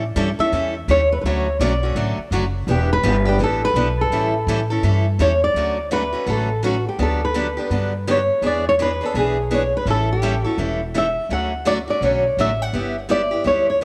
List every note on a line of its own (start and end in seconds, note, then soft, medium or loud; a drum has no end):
0.00 0.15 A2 medium
0.16 0.37 G2 loud
0.16 0.28 E3 medium
0.16 0.28 G3 medium
0.16 0.28 C#4 medium
0.16 0.28 E4 loud
0.16 0.28 A4 loud
0.38 0.52 C#4 medium
0.38 0.52 E4 medium
0.38 0.52 A4 medium
0.38 0.73 E5 medium
0.38 muted upright bass stroke soft
0.52 0.87 E2 medium
0.52 0.74 E3 medium
0.52 0.74 G3 medium
0.52 0.74 C#4 medium
0.52 0.74 E4 medium
0.52 0.74 A4 medium
0.88 1.23 D#2 medium
0.88 1.00 E3 medium
0.88 1.00 G3 medium
0.88 1.00 C#4 medium
0.88 1.00 E4 medium
0.88 1.00 A4 medium
0.88 1.11 C#5 medium
1.12 1.19 B4 medium
1.21 1.59 D2 medium
1.21 1.46 D3 medium
1.21 1.26 B4 medium
1.26 1.46 F#3 medium
1.26 1.46 A3 medium
1.26 1.47 C#4 medium
1.26 1.47 F#4 medium
1.26 1.60 C#5 medium
1.59 1.95 B1 medium
1.59 1.72 D3 medium
1.59 1.72 F#3 medium
1.59 1.72 A3 loud
1.59 1.72 C#4 loud
1.59 1.72 F#4 loud
1.59 2.28 D5 medium
1.83 1.95 A3 medium
1.83 1.96 C#4 soft
1.83 1.96 F#4 medium
1.95 2.17 A1 medium
1.95 2.17 D3 medium
1.95 2.18 F#3 medium
1.95 2.17 A3 medium
1.95 2.18 C#4 medium
1.95 2.18 F#4 medium
2.17 muted upright bass stroke soft
2.31 2.66 F#1 medium
2.31 2.43 D3 medium
2.31 2.44 F#3 medium
2.31 2.44 A3 medium
2.31 2.44 C#4 medium
2.31 2.44 F#4 medium
2.67 3.02 E1 medium
2.67 2.89 E3 medium
2.67 2.89 B3 medium
2.67 2.90 D4 medium
2.67 2.90 G4 medium
2.93 3.28 B4 loud
3.03 3.38 G1 loud
3.03 3.15 E3 loud
3.03 3.15 B3 loud
3.03 3.15 D4 medium
3.03 3.15 G4 loud
3.25 3.39 B3 medium
3.25 3.39 D4 medium
3.25 3.39 G4 medium
3.25 3.41 G4 medium
3.38 3.73 A1 medium
3.38 3.61 E3 medium
3.38 3.61 B3 medium
3.38 3.61 D4 medium
3.38 3.61 G4 medium
3.43 3.63 A4 medium
3.65 4.00 B4 loud
3.74 4.09 B1 loud
3.74 3.87 E3 medium
3.74 3.87 B3 medium
3.74 3.87 D4 loud
3.74 3.87 G4 medium
4.01 5.17 A4 medium
4.10 4.45 A1 medium
4.10 4.33 E3 medium
4.10 4.33 G3 medium
4.10 4.33 C#4 medium
4.10 4.33 E4 medium
4.10 4.33 A4 medium
4.47 4.82 A2 medium
4.47 4.59 E3 medium
4.47 4.59 G3 loud
4.47 4.59 C#4 medium
4.47 4.59 E4 loud
4.47 4.60 A4 loud
4.70 4.83 C#4 soft
4.70 4.83 E4 medium
4.70 4.83 A4 medium
4.83 5.18 G2 medium
4.83 5.04 E3 medium
4.83 5.04 G3 medium
4.83 5.05 C#4 medium
4.83 5.05 E4 medium
4.83 5.05 A4 medium
5.19 5.54 E2 medium
5.19 5.30 E3 medium
5.19 5.31 G3 medium
5.19 5.31 C#4 medium
5.19 5.31 E4 medium
5.19 5.31 A4 medium
5.19 5.43 C#5 medium
5.44 5.93 D5 medium
5.54 6.12 D2 medium
5.54 5.77 D3 medium
5.54 5.77 F#3 medium
5.54 5.77 A3 medium
5.54 5.77 C#4 medium
5.54 5.77 F#4 medium
5.91 6.02 D3 medium
5.91 6.02 F#3 medium
5.91 6.03 A3 medium
5.91 6.03 C#4 medium
5.91 6.03 F#4 medium
5.91 6.25 B4 medium
6.13 6.26 A3 soft
6.13 6.26 C#4 soft
6.13 6.26 F#4 medium
6.26 6.84 A1 medium
6.26 6.48 D3 medium
6.26 6.48 F#3 medium
6.26 6.48 A3 medium
6.26 6.48 C#4 medium
6.26 6.48 F#4 medium
6.26 6.62 A4 medium
6.63 6.74 D3 medium
6.63 6.74 F#3 medium
6.63 6.75 A3 medium
6.63 6.75 C#4 medium
6.63 6.75 F#4 medium
6.63 6.85 F#4 medium
6.89 7.00 G4 medium
6.98 7.56 D2 medium
6.98 7.20 D3 medium
6.98 7.20 F#3 medium
6.98 7.20 B3 medium
6.98 7.20 D4 medium
6.98 7.21 G4 medium
7.03 7.24 A4 medium
7.25 7.69 B4 medium
7.34 7.46 D3 medium
7.34 7.46 F#3 medium
7.34 7.46 B3 loud
7.34 7.46 D4 medium
7.34 7.46 G4 medium
7.57 7.70 B3 soft
7.57 7.70 D4 medium
7.57 7.70 G4 medium
7.70 8.28 G2 medium
7.70 7.92 D3 medium
7.70 7.92 F#3 medium
7.70 7.92 B3 medium
7.70 7.92 D4 medium
7.70 7.92 G4 medium
8.07 8.18 D3 medium
8.07 8.18 F#3 medium
8.07 8.18 B3 medium
8.07 8.18 D4 loud
8.07 8.19 G4 loud
8.07 8.46 C#5 medium
8.42 8.99 E2 medium
8.42 8.64 E3 medium
8.42 8.64 B3 medium
8.42 8.64 D4 medium
8.42 8.64 G#4 medium
8.47 8.66 D5 medium
8.69 8.74 C#5 loud
8.79 8.90 E3 medium
8.79 8.90 B3 medium
8.79 8.90 D4 medium
8.79 8.90 G#4 medium
8.79 9.05 B4 medium
9.01 9.14 B3 medium
9.01 9.14 D4 medium
9.01 9.14 G#4 medium
9.05 9.17 A4 medium
9.14 9.72 B1 medium
9.14 9.36 E3 medium
9.14 9.36 B3 medium
9.14 9.36 D4 medium
9.14 9.36 G#4 medium
9.19 9.54 G#4 medium
9.51 9.62 E3 medium
9.51 9.62 B3 medium
9.51 9.62 D4 medium
9.51 9.62 G#4 medium
9.51 9.73 C#5 medium
9.77 9.89 B4 medium
9.85 10.43 A1 medium
9.85 10.08 E3 medium
9.85 10.08 G3 medium
9.85 10.08 C#4 medium
9.85 10.08 E4 medium
9.85 10.08 A4 medium
9.90 10.09 A4 medium
10.13 10.45 G4 medium
10.22 10.33 E3 medium
10.22 10.34 G3 loud
10.22 10.34 C#4 medium
10.22 10.34 E4 medium
10.22 10.34 A4 medium
10.44 10.57 C#4 soft
10.44 10.58 E4 medium
10.44 10.57 F#4 medium
10.44 10.57 A4 medium
10.58 11.15 E1 medium
10.58 10.79 E3 medium
10.58 10.80 G3 medium
10.58 10.80 C#4 medium
10.58 10.80 E4 medium
10.58 10.80 A4 medium
10.94 11.05 E3 medium
10.94 11.05 G3 medium
10.94 11.06 C#4 medium
10.94 11.06 E4 medium
10.94 11.06 A4 medium
10.94 11.32 E5 medium
11.29 11.87 D2 medium
11.29 11.51 D3 medium
11.29 11.51 F#3 medium
11.29 11.52 A3 medium
11.29 11.52 C#4 medium
11.29 11.52 F#4 medium
11.29 11.67 F#5 medium
11.65 11.77 D3 medium
11.65 11.77 F#3 medium
11.65 11.77 A3 loud
11.65 11.77 C#4 medium
11.65 11.77 F#4 loud
11.65 11.73 D5 loud
11.88 12.02 A3 soft
11.88 12.02 C#4 soft
11.88 12.01 F#4 medium
11.88 12.02 D5 medium
12.01 12.31 B1 medium
12.01 12.23 D3 medium
12.01 12.23 F#3 medium
12.01 12.23 A3 medium
12.01 12.23 C#4 medium
12.01 12.24 F#4 medium
12.01 12.40 C#5 medium
12.37 12.68 A1 medium
12.37 12.49 D3 medium
12.37 12.49 F#3 medium
12.37 12.50 A3 medium
12.37 12.50 C#4 medium
12.37 12.50 F#4 medium
12.37 12.62 E5 medium
12.62 13.10 F#5 medium
12.73 13.31 G1 medium
12.73 12.95 G3 medium
12.73 12.95 B3 medium
12.73 12.95 E4 medium
12.73 12.95 G4 medium
13.09 13.20 G3 medium
13.09 13.21 B3 medium
13.09 13.21 E4 loud
13.09 13.21 G4 medium
13.09 13.47 D5 loud
13.31 13.44 B3 soft
13.31 13.44 E4 soft
13.31 13.44 G4 medium
13.44 13.84 D2 medium
13.44 13.66 G3 medium
13.44 13.66 B3 medium
13.44 13.66 E4 medium
13.44 13.67 G4 medium
13.44 13.69 C#5 medium
13.70 13.82 C#5 medium